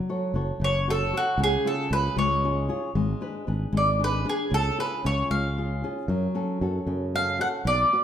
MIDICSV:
0, 0, Header, 1, 4, 480
1, 0, Start_track
1, 0, Key_signature, 3, "minor"
1, 0, Tempo, 522648
1, 1279, Time_signature, 6, 3, 24, 8
1, 7382, End_track
2, 0, Start_track
2, 0, Title_t, "Mandolin"
2, 0, Program_c, 0, 25
2, 591, Note_on_c, 0, 73, 85
2, 809, Note_off_c, 0, 73, 0
2, 831, Note_on_c, 0, 69, 87
2, 1062, Note_off_c, 0, 69, 0
2, 1078, Note_on_c, 0, 66, 84
2, 1280, Note_off_c, 0, 66, 0
2, 1318, Note_on_c, 0, 68, 90
2, 1531, Note_off_c, 0, 68, 0
2, 1537, Note_on_c, 0, 69, 75
2, 1750, Note_off_c, 0, 69, 0
2, 1771, Note_on_c, 0, 71, 89
2, 2003, Note_off_c, 0, 71, 0
2, 2006, Note_on_c, 0, 73, 72
2, 2680, Note_off_c, 0, 73, 0
2, 3464, Note_on_c, 0, 74, 74
2, 3678, Note_off_c, 0, 74, 0
2, 3711, Note_on_c, 0, 71, 85
2, 3913, Note_off_c, 0, 71, 0
2, 3944, Note_on_c, 0, 68, 71
2, 4148, Note_off_c, 0, 68, 0
2, 4171, Note_on_c, 0, 69, 91
2, 4394, Note_off_c, 0, 69, 0
2, 4409, Note_on_c, 0, 71, 76
2, 4625, Note_off_c, 0, 71, 0
2, 4650, Note_on_c, 0, 73, 77
2, 4864, Note_off_c, 0, 73, 0
2, 4876, Note_on_c, 0, 77, 72
2, 5563, Note_off_c, 0, 77, 0
2, 6572, Note_on_c, 0, 77, 90
2, 6789, Note_off_c, 0, 77, 0
2, 6805, Note_on_c, 0, 78, 81
2, 6868, Note_off_c, 0, 78, 0
2, 7046, Note_on_c, 0, 74, 95
2, 7382, Note_off_c, 0, 74, 0
2, 7382, End_track
3, 0, Start_track
3, 0, Title_t, "Nylon-string guitar"
3, 0, Program_c, 1, 24
3, 0, Note_on_c, 1, 54, 59
3, 85, Note_on_c, 1, 66, 43
3, 89, Note_on_c, 1, 69, 41
3, 90, Note_on_c, 1, 73, 50
3, 308, Note_off_c, 1, 66, 0
3, 312, Note_off_c, 1, 54, 0
3, 314, Note_off_c, 1, 69, 0
3, 317, Note_off_c, 1, 73, 0
3, 320, Note_on_c, 1, 66, 41
3, 325, Note_on_c, 1, 69, 38
3, 329, Note_on_c, 1, 73, 46
3, 563, Note_on_c, 1, 49, 55
3, 710, Note_off_c, 1, 66, 0
3, 713, Note_off_c, 1, 69, 0
3, 715, Note_off_c, 1, 73, 0
3, 807, Note_on_c, 1, 66, 42
3, 816, Note_on_c, 1, 69, 36
3, 820, Note_on_c, 1, 73, 37
3, 1025, Note_off_c, 1, 66, 0
3, 1031, Note_off_c, 1, 69, 0
3, 1032, Note_off_c, 1, 49, 0
3, 1035, Note_off_c, 1, 73, 0
3, 1036, Note_on_c, 1, 66, 44
3, 1042, Note_on_c, 1, 69, 45
3, 1047, Note_on_c, 1, 73, 42
3, 1227, Note_off_c, 1, 66, 0
3, 1230, Note_off_c, 1, 69, 0
3, 1233, Note_off_c, 1, 73, 0
3, 1276, Note_on_c, 1, 49, 67
3, 1516, Note_on_c, 1, 61, 46
3, 1520, Note_on_c, 1, 65, 39
3, 1525, Note_on_c, 1, 68, 49
3, 1745, Note_off_c, 1, 61, 0
3, 1746, Note_off_c, 1, 49, 0
3, 1747, Note_off_c, 1, 65, 0
3, 1755, Note_on_c, 1, 61, 39
3, 1756, Note_off_c, 1, 68, 0
3, 1760, Note_on_c, 1, 65, 40
3, 1767, Note_on_c, 1, 68, 45
3, 1987, Note_on_c, 1, 56, 69
3, 2144, Note_off_c, 1, 61, 0
3, 2145, Note_off_c, 1, 65, 0
3, 2151, Note_off_c, 1, 68, 0
3, 2241, Note_on_c, 1, 61, 37
3, 2246, Note_on_c, 1, 65, 39
3, 2249, Note_on_c, 1, 68, 43
3, 2458, Note_off_c, 1, 65, 0
3, 2459, Note_off_c, 1, 56, 0
3, 2459, Note_off_c, 1, 61, 0
3, 2459, Note_off_c, 1, 68, 0
3, 2467, Note_on_c, 1, 61, 42
3, 2471, Note_on_c, 1, 65, 40
3, 2477, Note_on_c, 1, 68, 52
3, 2659, Note_off_c, 1, 61, 0
3, 2659, Note_off_c, 1, 65, 0
3, 2660, Note_off_c, 1, 68, 0
3, 2714, Note_on_c, 1, 56, 65
3, 2945, Note_on_c, 1, 62, 41
3, 2952, Note_on_c, 1, 68, 46
3, 2956, Note_on_c, 1, 71, 48
3, 3178, Note_off_c, 1, 62, 0
3, 3180, Note_off_c, 1, 56, 0
3, 3180, Note_off_c, 1, 68, 0
3, 3185, Note_off_c, 1, 71, 0
3, 3187, Note_on_c, 1, 62, 41
3, 3194, Note_on_c, 1, 68, 41
3, 3196, Note_on_c, 1, 71, 49
3, 3421, Note_on_c, 1, 56, 67
3, 3576, Note_off_c, 1, 62, 0
3, 3578, Note_off_c, 1, 68, 0
3, 3581, Note_off_c, 1, 71, 0
3, 3667, Note_on_c, 1, 62, 37
3, 3668, Note_on_c, 1, 68, 33
3, 3672, Note_on_c, 1, 71, 44
3, 3891, Note_off_c, 1, 62, 0
3, 3891, Note_off_c, 1, 68, 0
3, 3893, Note_off_c, 1, 56, 0
3, 3894, Note_off_c, 1, 71, 0
3, 3900, Note_on_c, 1, 62, 44
3, 3903, Note_on_c, 1, 68, 39
3, 3908, Note_on_c, 1, 71, 55
3, 4094, Note_off_c, 1, 62, 0
3, 4094, Note_off_c, 1, 68, 0
3, 4096, Note_off_c, 1, 71, 0
3, 4137, Note_on_c, 1, 49, 57
3, 4388, Note_on_c, 1, 61, 41
3, 4392, Note_on_c, 1, 65, 37
3, 4395, Note_on_c, 1, 68, 45
3, 4616, Note_off_c, 1, 49, 0
3, 4618, Note_off_c, 1, 61, 0
3, 4622, Note_off_c, 1, 65, 0
3, 4628, Note_on_c, 1, 61, 38
3, 4632, Note_off_c, 1, 68, 0
3, 4634, Note_on_c, 1, 65, 33
3, 4643, Note_on_c, 1, 68, 44
3, 4871, Note_on_c, 1, 56, 50
3, 5024, Note_off_c, 1, 61, 0
3, 5026, Note_off_c, 1, 65, 0
3, 5032, Note_off_c, 1, 68, 0
3, 5121, Note_on_c, 1, 61, 32
3, 5123, Note_on_c, 1, 65, 34
3, 5127, Note_on_c, 1, 68, 42
3, 5347, Note_off_c, 1, 56, 0
3, 5351, Note_off_c, 1, 61, 0
3, 5353, Note_off_c, 1, 65, 0
3, 5357, Note_off_c, 1, 68, 0
3, 5361, Note_on_c, 1, 61, 46
3, 5365, Note_on_c, 1, 65, 40
3, 5368, Note_on_c, 1, 68, 48
3, 5551, Note_off_c, 1, 61, 0
3, 5553, Note_off_c, 1, 65, 0
3, 5554, Note_off_c, 1, 68, 0
3, 5596, Note_on_c, 1, 54, 63
3, 5829, Note_on_c, 1, 61, 45
3, 5833, Note_on_c, 1, 66, 42
3, 5837, Note_on_c, 1, 69, 47
3, 6062, Note_off_c, 1, 61, 0
3, 6067, Note_off_c, 1, 66, 0
3, 6069, Note_off_c, 1, 54, 0
3, 6073, Note_off_c, 1, 69, 0
3, 6073, Note_on_c, 1, 61, 37
3, 6078, Note_on_c, 1, 66, 41
3, 6084, Note_on_c, 1, 69, 42
3, 6311, Note_on_c, 1, 49, 58
3, 6465, Note_off_c, 1, 61, 0
3, 6468, Note_off_c, 1, 66, 0
3, 6472, Note_off_c, 1, 69, 0
3, 6561, Note_on_c, 1, 61, 34
3, 6566, Note_on_c, 1, 66, 32
3, 6571, Note_on_c, 1, 69, 38
3, 6773, Note_off_c, 1, 61, 0
3, 6778, Note_off_c, 1, 66, 0
3, 6784, Note_on_c, 1, 61, 43
3, 6785, Note_off_c, 1, 49, 0
3, 6788, Note_off_c, 1, 69, 0
3, 6789, Note_on_c, 1, 66, 42
3, 6799, Note_on_c, 1, 69, 50
3, 6979, Note_off_c, 1, 61, 0
3, 6983, Note_off_c, 1, 66, 0
3, 6989, Note_off_c, 1, 69, 0
3, 7028, Note_on_c, 1, 59, 57
3, 7282, Note_off_c, 1, 59, 0
3, 7282, Note_on_c, 1, 66, 49
3, 7285, Note_on_c, 1, 71, 43
3, 7289, Note_on_c, 1, 74, 51
3, 7382, Note_off_c, 1, 66, 0
3, 7382, Note_off_c, 1, 71, 0
3, 7382, Note_off_c, 1, 74, 0
3, 7382, End_track
4, 0, Start_track
4, 0, Title_t, "Fretless electric bass"
4, 0, Program_c, 2, 35
4, 311, Note_on_c, 2, 30, 81
4, 469, Note_off_c, 2, 30, 0
4, 549, Note_on_c, 2, 30, 79
4, 1020, Note_off_c, 2, 30, 0
4, 1264, Note_on_c, 2, 37, 98
4, 1431, Note_off_c, 2, 37, 0
4, 1752, Note_on_c, 2, 37, 81
4, 1907, Note_off_c, 2, 37, 0
4, 1989, Note_on_c, 2, 37, 86
4, 2456, Note_off_c, 2, 37, 0
4, 2711, Note_on_c, 2, 32, 108
4, 2873, Note_off_c, 2, 32, 0
4, 3197, Note_on_c, 2, 32, 78
4, 3347, Note_off_c, 2, 32, 0
4, 3424, Note_on_c, 2, 32, 83
4, 3893, Note_off_c, 2, 32, 0
4, 4147, Note_on_c, 2, 37, 93
4, 4311, Note_off_c, 2, 37, 0
4, 4638, Note_on_c, 2, 37, 73
4, 4792, Note_off_c, 2, 37, 0
4, 4874, Note_on_c, 2, 37, 73
4, 5346, Note_off_c, 2, 37, 0
4, 5586, Note_on_c, 2, 42, 100
4, 5753, Note_off_c, 2, 42, 0
4, 6074, Note_on_c, 2, 42, 78
4, 6230, Note_off_c, 2, 42, 0
4, 6304, Note_on_c, 2, 42, 77
4, 6776, Note_off_c, 2, 42, 0
4, 7026, Note_on_c, 2, 35, 92
4, 7192, Note_off_c, 2, 35, 0
4, 7382, End_track
0, 0, End_of_file